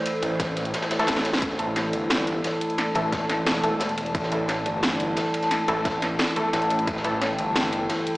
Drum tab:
RD |x-x-x-x-xxxxxxx-|x-x-x-x-x-x-x---|x-x-x-x-x-x-x-x-|x-x-x-x-x-x-x-x-|
HH |x-x-x-xxx-xxxxxx|x-x-x-x-x-x-x-xx|x-x-x-x-x-x-xxxx|x-x-x-x-x-x-x-xx|
SD |----o-o-oooooooo|-o--o---o---oo--|o---o-o-oo--o---|-o--o---o---oo-o|
BD |----o-----------|o---------------|----o-----------|o---------------|

RD |x-x-x-x-x-x-x-x-|x-x-x-x-x-x-x---|
HH |x-x-x-x-x-x-xxxx|x-x-x-x-x-x-x-x-|
SD |o---o-o-oo--o---|-o--o---o---oo--|
BD |----o-----------|o---------------|